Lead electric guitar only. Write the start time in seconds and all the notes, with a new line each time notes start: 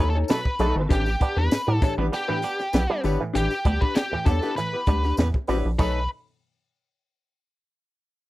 0.10 A4
0.30 B4
0.92 G4
1.38 B4
1.84 A4
2.14 G4
3.35 G4
3.81 B4
3.95 G4
4.26 A4
4.56 B4
5.79 B4